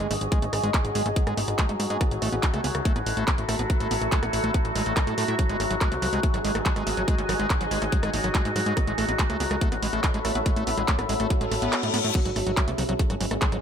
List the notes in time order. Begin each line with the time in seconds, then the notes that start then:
Already playing: F#3 F#4 G#4 D#5 G#5, sub drop
0.00 G#1 G#3, cross-stick, closed hi-hat
0.11 G#1 A3, open hi-hat
0.21 G#1, closed hi-hat
0.32 G#3, kick, cross-stick, closed hi-hat
0.42 G#1 A3, closed hi-hat
0.53 G#1, cross-stick, open hi-hat
0.63 G#1 G#3, closed hi-hat
0.74 A3, kick, cross-stick, clap, closed hi-hat
0.85 G#1, closed hi-hat
0.95 G#1 G#3, open hi-hat
1.06 G#1 A3, cross-stick, closed hi-hat
1.16 kick, closed hi-hat
1.27 G#1 G#3, cross-stick, closed hi-hat
1.37 G#1 A3, open hi-hat
1.48 G#1, cross-stick, closed hi-hat
1.59 G#3, kick, clap, closed hi-hat
1.69 G#2 A3, closed hi-hat
1.80 G#2, cross-stick, open hi-hat
1.90 G#2 G#3, closed hi-hat
2.01 B3 A4, kick, cross-stick, closed hi-hat
2.11 A1, closed hi-hat
2.22 A1 A3, cross-stick, open hi-hat
2.32 A1 B3 B5, closed hi-hat
2.38 E5
2.43 kick, clap, closed hi-hat
2.54 C#2 A3, cross-stick, closed hi-hat
2.64 C#2 B3, open hi-hat
2.75 C#2, cross-stick, closed hi-hat
2.85 A3, kick, closed hi-hat
2.96 A1 B3, cross-stick, closed hi-hat
3.06 A1, open hi-hat
3.17 A1 A3, closed hi-hat
3.28 B3, kick, cross-stick, clap, closed hi-hat
3.38 A1, closed hi-hat
3.49 A1 A3, cross-stick, open hi-hat
3.59 A1 B3, closed hi-hat
3.70 kick, cross-stick, closed hi-hat
3.80 A1 A3, closed hi-hat
3.91 A1 B3, open hi-hat
4.01 A1, cross-stick, closed hi-hat
4.12 A3, kick, clap, closed hi-hat
4.23 A1 B3, cross-stick, closed hi-hat
4.33 A1, open hi-hat
4.44 A1 A3, cross-stick, closed hi-hat
4.54 B3, kick, closed hi-hat
4.65 A1, closed hi-hat
4.75 A1 G#3, cross-stick, open hi-hat
4.86 A1 A3, closed hi-hat
4.97 A3, kick, cross-stick, clap, closed hi-hat
5.07 A2 A3, closed hi-hat
5.18 A2 A3, cross-stick, open hi-hat
5.28 A2 E4, closed hi-hat
5.39 F#3 G#4, kick, closed hi-hat
5.49 G#1 G#3, closed hi-hat
5.60 G#1 A3 G#5, cross-stick, open hi-hat
5.71 G#1 F#3, closed hi-hat
5.78 G#3 D#5, kick, cross-stick, clap, closed hi-hat
5.92 C2 A3, closed hi-hat
6.02 C2 F#3, cross-stick, open hi-hat
6.13 C2 G#3, closed hi-hat
6.23 A3, kick, closed hi-hat
6.34 G#1 F#3, cross-stick, closed hi-hat
6.44 G#1 G#3, open hi-hat
6.55 G#1 A3, cross-stick, closed hi-hat
6.66 F#3, kick, clap, closed hi-hat
6.76 G#1 G#3, cross-stick, closed hi-hat
6.87 G#1 A3, open hi-hat
6.97 G#1 F#3, closed hi-hat
7.08 G#3, kick, cross-stick, closed hi-hat
7.18 G#1 A3, closed hi-hat
7.29 G#1 F#3, cross-stick, open hi-hat
7.39 G#1 G#3, closed hi-hat
7.50 A3, kick, cross-stick, clap, closed hi-hat
7.61 G#1 F#3, closed hi-hat
7.71 G#1 G#3, open hi-hat
7.82 G#1 A3, cross-stick, closed hi-hat
7.92 F#3, kick, closed hi-hat
8.03 G#1 G#3, cross-stick, closed hi-hat
8.13 G#1 A3, open hi-hat
8.24 G#1 F#3, cross-stick, closed hi-hat
8.35 G#3, kick, clap, closed hi-hat
8.45 G#2 A3, closed hi-hat
8.56 G#2 F#3, cross-stick, open hi-hat
8.66 G#2 G#3, closed hi-hat
8.77 B3 A4, kick, cross-stick, closed hi-hat
8.87 A1 G#3, closed hi-hat
8.94 A1 A3 E5, cross-stick, open hi-hat
9.08 A1 B3 B5, closed hi-hat
9.19 G#3, kick, clap, closed hi-hat
9.30 C#2 A3, cross-stick, closed hi-hat
9.40 C#2 B3, open hi-hat
9.51 C#2 G#3, cross-stick, closed hi-hat
9.61 A3, kick, closed hi-hat
9.72 A1 B3, cross-stick, closed hi-hat
9.82 A1 G#3, open hi-hat
9.93 A1 A3, closed hi-hat
10.04 B3, kick, cross-stick, clap, closed hi-hat
10.14 A1 G#3, closed hi-hat
10.25 A1 A3, cross-stick, open hi-hat
10.35 A1 B3, closed hi-hat
10.46 G#3, kick, cross-stick, closed hi-hat
10.56 A1 A3, closed hi-hat
10.67 A1 B3, open hi-hat
10.78 A1 G#3, cross-stick, closed hi-hat
10.88 A3, kick, clap, closed hi-hat
10.99 A1 B3, cross-stick, closed hi-hat
11.09 A1 G#3, open hi-hat
11.20 A1 A3, cross-stick, closed hi-hat
11.30 B3, kick, closed hi-hat, reverse cymbal
11.41 A1 G#3, closed hi-hat
11.51 A1 A3, cross-stick, open hi-hat
11.62 A1 B3, closed hi-hat
11.73 cross-stick, clap, closed hi-hat
11.83 A2 G#3, closed hi-hat
11.94 A2 B3, cross-stick, open hi-hat
12.04 A2, closed hi-hat
12.15 F#3 C#4 G#4, kick, closed hi-hat, crash
12.25 G#1 F#3, closed hi-hat
12.36 G#1 A3, cross-stick, open hi-hat
12.45 G#1 F#3 G#5, closed hi-hat
12.52 D#5
12.57 F#3, kick, cross-stick, clap, closed hi-hat
12.68 C2 A3, closed hi-hat
12.78 C2 F#3, cross-stick, open hi-hat
12.89 C2 F#3, closed hi-hat
12.99 A3, kick, closed hi-hat
13.10 G#1 F#3, cross-stick, closed hi-hat
13.21 G#1 F#3, open hi-hat
13.31 G#1 A3, cross-stick, closed hi-hat
13.42 F#3, kick, clap, closed hi-hat
13.52 G#1 F#3, cross-stick, closed hi-hat